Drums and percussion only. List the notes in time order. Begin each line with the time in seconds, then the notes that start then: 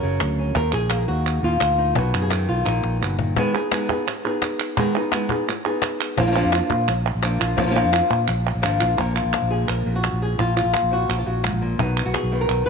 0.20 cajon slap, clap
0.55 cajon bass, cajon slap
0.72 clap
0.90 cajon slap, clap
1.26 clap
1.60 cajon slap, clap
1.95 cajon bass, clap
2.14 clap
2.30 cajon slap, clap
2.66 cajon slap, clap
2.84 cajon slap
3.02 clap
3.19 cajon bass
3.37 cajon bass
3.54 cajon slap, clap
3.71 cajon slap, clap
3.89 cajon bass, cajon slap
4.08 clap
4.25 clap
4.42 cajon slap, clap
4.59 cajon slap, clap
4.77 cajon bass
4.95 clap
5.12 cajon slap, clap
5.29 cajon bass, clap
5.48 clap
5.65 clap
5.82 cajon slap, clap
6.01 clap
6.17 cajon bass
6.52 cajon slap, clap
6.70 cajon bass, clap
6.88 clap
7.06 clap
7.23 cajon slap, clap
7.41 clap
7.58 cajon bass, clap
7.76 clap
7.93 cajon slap, clap
8.10 cajon bass, cajon slap, clap
8.28 clap
8.46 clap
8.63 cajon slap, clap
8.81 cajon slap, clap
8.98 cajon bass, cajon slap, clap
9.16 clap
9.33 cajon slap, clap
9.68 clap
10.04 cajon slap, clap
10.39 cajon bass, cajon slap
10.57 clap
10.74 cajon slap, clap
11.10 clap
11.44 cajon slap, clap
11.79 cajon bass
11.97 clap
12.14 cajon slap, clap
12.49 clap